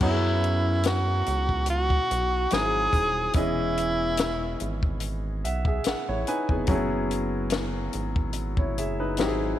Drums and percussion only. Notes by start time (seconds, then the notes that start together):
0.01 kick, crash
0.44 closed hi-hat
0.83 snare, closed hi-hat
1.26 closed hi-hat
1.49 kick
1.66 closed hi-hat
1.90 kick
2.11 closed hi-hat
2.50 snare, closed hi-hat
2.93 kick, closed hi-hat
3.33 kick, closed hi-hat
3.77 closed hi-hat
4.17 snare, closed hi-hat
4.60 closed hi-hat
4.83 kick
5.00 closed hi-hat
5.45 closed hi-hat
5.65 kick
5.84 snare, closed hi-hat
6.27 closed hi-hat
6.49 kick
6.67 kick, closed hi-hat
7.11 closed hi-hat
7.50 snare, closed hi-hat
7.93 closed hi-hat
8.16 kick
8.33 closed hi-hat
8.57 kick
8.78 closed hi-hat
9.17 snare, closed hi-hat